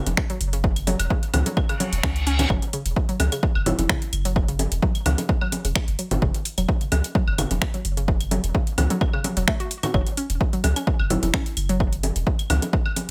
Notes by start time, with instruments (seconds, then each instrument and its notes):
0.06 sub bass E1, closed hi-hat, low bongo
0.17 finger snap, kick
0.30 synth arpeggio sound F#3, closed hi-hat
0.41 sub bass F#1, open hi-hat
0.53 synth arpeggio sound C#3, closed hi-hat
0.64 kick
0.76 closed hi-hat, claves
0.87 synth arpeggio sound F#3, open hi-hat, low bongo
0.99 sub bass E1, closed hi-hat, high woodblock
1.10 synth arpeggio sound C#3, kick
1.23 closed hi-hat
1.34 sub bass C#2, open hi-hat, low bongo, low conga, high woodblock
1.46 synth arpeggio sound F#3, closed hi-hat, low bongo
1.57 kick, reverse cymbal, claves
1.69 synth arpeggio sound C#3, closed hi-hat, high woodblock
1.80 synth arpeggio sound F#3, open hi-hat, low bongo
1.93 sub bass E1, closed hi-hat
2.03 sub bass C#2, synth arpeggio sound C#4, finger snap, kick
2.16 closed hi-hat
2.27 synth arpeggio sound C#4, open hi-hat
2.39 synth arpeggio sound C#4, closed hi-hat, low conga, claves
2.50 sub bass F#1, synth arpeggio sound F#3, kick, claves
2.62 closed hi-hat
2.73 synth arpeggio sound C#3, open hi-hat
2.86 sub bass E1, closed hi-hat
2.96 kick
3.09 synth arpeggio sound F#3, closed hi-hat
3.20 sub bass C#2, open hi-hat, low bongo, high woodblock
3.32 synth arpeggio sound C#3, closed hi-hat, claves
3.43 kick
3.55 sub bass F#1, high woodblock
3.66 synth arpeggio sound F#3, marimba E4, open hi-hat, low conga
3.79 sub bass E1, marimba E4, closed hi-hat, low bongo
3.89 synth arpeggio sound C#3, finger snap, kick
4.02 closed hi-hat
4.13 sub bass F#1, open hi-hat, claves
4.25 synth arpeggio sound F#3, closed hi-hat
4.36 kick
4.48 synth arpeggio sound C#3, closed hi-hat
4.59 open hi-hat, low bongo
4.72 sub bass E1, closed hi-hat
4.82 synth arpeggio sound F#3, kick
4.95 closed hi-hat, claves
5.06 sub bass C#2, synth arpeggio sound C#3, open hi-hat, low bongo, low conga, high woodblock
5.18 closed hi-hat, low bongo
5.29 kick
5.41 synth arpeggio sound F#3, high woodblock
5.52 open hi-hat, low bongo
5.65 sub bass E1, synth arpeggio sound C#3, closed hi-hat
5.76 finger snap, kick, claves
5.88 sub bass F#1, closed hi-hat
5.99 synth arpeggio sound F#3, open hi-hat
6.11 sub bass F#1, closed hi-hat, low conga
6.22 sub bass F#1, synth arpeggio sound C#3, kick
6.34 closed hi-hat
6.45 open hi-hat
6.58 sub bass E1, synth arpeggio sound F#3, closed hi-hat, claves
6.69 kick
6.81 synth arpeggio sound C#3, closed hi-hat
6.92 sub bass C#2, open hi-hat, low bongo, high woodblock
7.04 closed hi-hat
7.15 synth arpeggio sound F#3, kick
7.28 sub bass F#1, high woodblock
7.38 synth arpeggio sound C#3, open hi-hat, low conga, claves
7.51 sub bass E1, closed hi-hat, low bongo
7.62 finger snap, kick
7.74 synth arpeggio sound F#3, closed hi-hat
7.85 sub bass F#1, open hi-hat
7.97 synth arpeggio sound C#3, closed hi-hat
8.08 kick
8.21 closed hi-hat, claves
8.31 synth arpeggio sound F#3, open hi-hat, low bongo
8.44 sub bass E1, closed hi-hat
8.55 synth arpeggio sound C#3, kick
8.67 closed hi-hat
8.78 sub bass C#2, open hi-hat, low bongo, low conga, high woodblock
8.90 synth arpeggio sound F#3, closed hi-hat, low bongo
9.01 kick, claves
9.13 synth arpeggio sound C#3, high woodblock
9.24 synth arpeggio sound F#3, open hi-hat, low bongo
9.37 sub bass E1, synth arpeggio sound F#3, closed hi-hat
9.48 synth arpeggio sound A3, finger snap, kick
9.60 synth arpeggio sound F#4, closed hi-hat
9.71 open hi-hat
9.83 synth arpeggio sound F#4, closed hi-hat, low conga, claves
9.94 sub bass F#1, synth arpeggio sound F#3, kick, claves
10.07 closed hi-hat
10.17 synth arpeggio sound C#4, open hi-hat
10.30 sub bass E1, closed hi-hat
10.41 kick
10.53 synth arpeggio sound F#3, closed hi-hat
10.64 sub bass C#2, open hi-hat, low bongo, high woodblock
10.76 synth arpeggio sound C#4, closed hi-hat, claves
10.87 kick
10.99 sub bass F#1, high woodblock
11.10 synth arpeggio sound F#3, marimba E4, open hi-hat, low conga
11.23 sub bass E1, marimba E4, closed hi-hat, low bongo
11.34 synth arpeggio sound C#4, finger snap, kick
11.46 closed hi-hat
11.57 sub bass F#1, open hi-hat, claves
11.69 synth arpeggio sound F#3, closed hi-hat
11.80 kick
11.93 closed hi-hat
12.03 open hi-hat, low bongo
12.16 sub bass E1, closed hi-hat
12.27 kick
12.39 closed hi-hat, claves
12.50 sub bass C#2, open hi-hat, low bongo, low conga, high woodblock
12.62 closed hi-hat, low bongo
12.73 kick
12.86 high woodblock
12.96 open hi-hat, low bongo